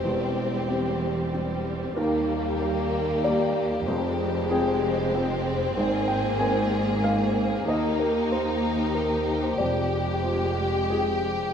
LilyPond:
<<
  \new Staff \with { instrumentName = "Violin section" } { \time 3/4 \key ees \major \tempo 4 = 94 g'2. | g'2.~ | g'2. | aes'2. |
g'2.~ | g'2. | }
  \new Staff \with { instrumentName = "Felt piano" } { \time 3/4 \key ees \major << { c''4 g'4. r8 | bes'2 d''4 | c''4 aes'4. r8 | c''8 g''8 aes''4 f''4 |
ees''8 bes'8 c''4 bes'8. c''16 | d''4 c''4 aes'4 | } \\ { <e,, e,>4 <g c'>4 <g c' g'>4 | <ees, ees>4 <g bes g'>4 <g bes g'>4 | <f,, f,>4 <c' f' g''>4 <c' f' g''>4 | <aes,, aes,>4 <c' ees' bes'>4 <c' ees' bes'>4 |
<ees, ees>4 <bes g' bes'>4 <bes g'>4 | <f,, f,>4 <aes f' g'>4 <aes f' g''>4 | } >> }
  \new Staff \with { instrumentName = "Violin section" } { \time 3/4 \key ees \major c'2. | bes2. | c'2.~ | c'2. |
ees'2. | g'2. | }
  \new Staff \with { instrumentName = "Viola section" } { \clef bass \time 3/4 \key ees \major g2.~ | g2. | aes2. | bes2.~ |
bes2. | aes2. | }
  \new Staff \with { instrumentName = "Cello section" } { \clef bass \time 3/4 \key ees \major e,2. | ees,2. | f,2. | aes,2. |
ees,2. | f,2. | }
  \new Staff \with { instrumentName = "Double bass section" } { \clef bass \time 3/4 \key ees \major e,,2. | ees,2. | f,,2. | aes,,2. |
ees,2. | f,,2. | }
>>